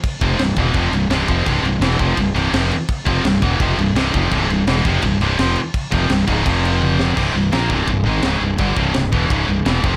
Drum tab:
CC |xxxxxxxx|xxxxxxxx|xxxxxxxx|xxxxxxxx|
RD |--------|--------|--------|--------|
SD |--o---o-|--o---o-|--o---o-|--o---o-|
T1 |--------|--------|--------|--------|
BD |oo-oo--o|o--oo---|oo-oo--o|o--oo---|

CC |xxxxxx--|x-------|--------|
RD |--------|--b-b-b-|b-b-b-b-|
SD |--o----o|--o---o-|--o---o-|
T1 |------o-|--------|--------|
BD |oo-oo---|o--oo---|oo-oo--o|